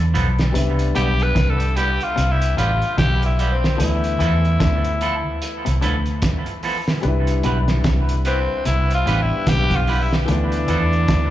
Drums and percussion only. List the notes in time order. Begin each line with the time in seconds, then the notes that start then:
0.15 closed hi-hat
0.39 snare, closed hi-hat
0.55 closed hi-hat
0.79 closed hi-hat
0.95 closed hi-hat
1.20 closed hi-hat
1.36 kick, snare, closed hi-hat
1.60 closed hi-hat
1.76 closed hi-hat
2.01 closed hi-hat
2.17 closed hi-hat
2.42 closed hi-hat
2.58 closed hi-hat
2.82 closed hi-hat
2.98 kick, snare, closed hi-hat
3.22 closed hi-hat
3.39 closed hi-hat
3.64 snare
3.80 closed hi-hat
4.04 closed hi-hat
4.20 closed hi-hat
4.45 closed hi-hat
4.60 kick, snare, closed hi-hat
4.84 closed hi-hat
5.01 closed hi-hat
5.42 closed hi-hat
5.66 closed hi-hat
5.82 closed hi-hat
6.06 closed hi-hat
6.22 kick, snare, closed hi-hat
6.46 closed hi-hat
6.63 open hi-hat
6.88 snare
7.03 closed hi-hat
7.27 closed hi-hat
7.43 closed hi-hat
7.68 snare, closed hi-hat
7.84 kick, snare, closed hi-hat
8.09 closed hi-hat
8.25 closed hi-hat
8.65 closed hi-hat
8.90 closed hi-hat
9.07 closed hi-hat
9.47 kick, snare, closed hi-hat
9.71 kick, closed hi-hat
9.87 open hi-hat
10.13 snare
10.28 closed hi-hat
10.52 closed hi-hat
10.68 closed hi-hat
10.93 closed hi-hat
11.08 kick, snare, closed hi-hat